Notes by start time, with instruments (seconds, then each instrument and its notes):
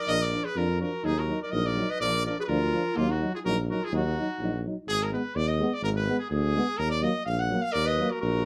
0.06 tuba A#1, euphonium F3 D4, clarinet A#4, trumpet D#5
0.19 clarinet A#4, trumpet D5
0.32 euphonium F3 D4
0.44 clarinet G#4, trumpet B4
0.55 tuba F2, euphonium F3 D4, clarinet F4, trumpet A#4
0.80 euphonium F3 D4, clarinet F#4, trumpet A#4
1.03 tuba D#2, euphonium F#3 D#4, clarinet D#4, trumpet G#4
1.19 clarinet F#4, trumpet A#4
1.28 euphonium F#3 D#4
1.42 clarinet A#4, trumpet D5
1.51 tuba A#1, euphonium F#3 D#4, clarinet A#4, trumpet D#5
1.65 clarinet A#4, trumpet D5
1.76 euphonium F#3 D#4
1.89 clarinet B4, trumpet D#5
2.00 tuba A#1, euphonium F3 D4, clarinet A#4, trumpet D5
2.24 euphonium F3 D4, clarinet A#4, trumpet D5
2.39 clarinet F#4 G#4, trumpet B4
2.44 clarinet F4, trumpet B4
2.48 tuba D2, euphonium F3 D4, trumpet A#4
2.73 euphonium F3 D4
2.95 tuba D#2, euphonium F#3 D#4, clarinet A#3, trumpet F4
3.09 clarinet D#4, trumpet F#4
3.21 euphonium F#3 D#4
3.34 clarinet F4, trumpet G#4
3.45 tuba A#1, euphonium F#3 D#4, clarinet F#4, trumpet A#4
3.70 euphonium F#3 D#4, clarinet F#4, trumpet A#4
3.83 clarinet F4, trumpet G#4
3.91 tuba D#2, euphonium F#3 D#4, clarinet D#4, trumpet F#4
4.19 euphonium F#3 D#4
4.39 tuba A#1, euphonium F#3
4.43 euphonium D#4
4.65 euphonium F#3 D#4
4.88 tuba G#1, trumpet G#4
5.03 trumpet A#4
5.11 euphonium G#3 B3, trumpet B4
5.35 tuba D#2, trumpet D5
5.48 trumpet D#5
5.59 euphonium G#3 B3
5.74 trumpet D5
5.82 tuba G#1, trumpet A#4
5.96 trumpet B4
6.08 euphonium G#3 B3
6.19 trumpet G#4
6.30 tuba D2, trumpet G#4
6.55 euphonium G#3 B3
6.78 tuba D#2, trumpet A#4
6.91 trumpet D5
7.02 euphonium F#3 A#3, trumpet D#5
7.26 tuba A#1, trumpet F5
7.39 trumpet F#5
7.49 euphonium F#3 A#3
7.62 trumpet F5
7.73 tuba D#2, clarinet A#4, trumpet D5
7.86 clarinet B4, trumpet D#5
7.98 euphonium F#3 A#3
8.11 clarinet F#4, trumpet A#4
8.21 tuba A#1, clarinet F#4, trumpet A#4